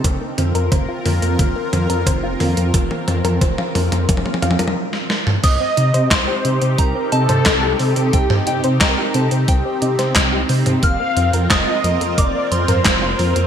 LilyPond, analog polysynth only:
\new Staff \with { instrumentName = "Analog polysynth" } { \time 4/4 \key c \dorian \tempo 4 = 89 r1 | r1 | ees''4 c''4 bes'8 a'4. | g'8 g'8 bes'8 a'8 g'4. r8 |
f''4 ees''4 d''8 c''4. | }